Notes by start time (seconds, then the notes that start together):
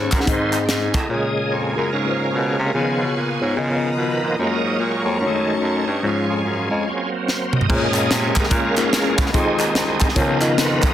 Already playing: C#5
0.12 F#2, kick, clap, closed hi-hat
0.19 C#4 D#4 G#4 F#5, snare
0.23 G#2 C4 D#4 B4
0.27 G#2 D#3 G#3 C4 G#4 C5 D#5, kick, closed hi-hat
0.53 clap, closed hi-hat
0.66 G#2 G4 C5, snare, closed hi-hat
0.70 G#4
0.94 A2 D#5, kick, clap, closed hi-hat
1.09 A#2 C#3 A#3 F4 G#4 C#5 F5 G#5 A#5
1.13 G#3 A#3 G#4 D#5
1.51 F2 C#5
1.76 F#2 A#3 F4 G#4 A#4
1.92 G#2 C#4 F4 A#4
2.05 A#3 F4 G#4 B4
2.11 C5
2.33 B2
2.59 C3
2.68 A#4
2.74 C#3 D#3 F3 B3 F4 G#4 C#5 C#6
3.01 B2
3.15 A#2 B3 F4 G#4
3.41 G#2 B3 F4 G#4 C#5
3.57 C#3 D#3 F3 B3 F4 A#4 D#5 A#5 D#6
3.69 B3 F4 A#4 C#5
3.75 D#5
3.97 B2 B4
4.23 A#2
4.27 D#5
4.39 F#2 G#3 A#3 F4 F#4 C#5 F5 A#5 C#6
4.43 F#3 A#3 A#4 D#5
4.64 G#2
4.79 A#2
4.84 C#5
5.05 F2 A#3 F4 F#4 C#5
5.09 A#4
5.19 F#2 A3 D#4 F#4 C#5 D#5 A5
5.26 D#3 G#3 A3 C#4 D#4 A4
5.35 A3 D#4 F#4 C#5
5.61 F#2
5.87 G2
6.03 G#2 F3 G#3 C#4 F4 C#5 F5 G#5
6.07 F4 G#4
6.29 F2
6.44 F#2 C#4 F4
6.49 G#4
6.69 F2 G#3 C#4 F4 D#5
6.88 F#3 A#3 C4
7.28 C5, snare
7.53 D#5, mid tom
7.61 floor tom
7.69 A#2 G#3 A#3 C#4 F4 G#4 C5 D#5, kick, crash
7.76 C#5
7.93 C#3, clap, closed hi-hat
8.10 C3 C#5, snare, closed hi-hat
8.36 A#4, kick, clap, closed hi-hat
8.44 snare
8.51 A#2 C#4 F4 A#4, kick, closed hi-hat
8.76 G#2 A#3 C#4 F4 G#4 A#4, clap, closed hi-hat
8.93 E2, snare, closed hi-hat
9.18 kick, clap, closed hi-hat
9.26 snare
9.33 F2 D#3 G#3 C4 D#4 F4 G#4 D#5, kick, closed hi-hat
9.59 D#2, clap, closed hi-hat
9.75 C2 C4 D#4 G#4, snare, closed hi-hat
10.00 kick, clap, closed hi-hat
10.09 snare
10.15 C#2 C#3 D#3 F3 B3 D#4 F4 A#4 C#5, kick, closed hi-hat
10.19 B3
10.40 B3 D#4 F4 A#4 D#5, clap, closed hi-hat
10.58 F2 B4, snare, closed hi-hat
10.82 D#5, kick, clap, closed hi-hat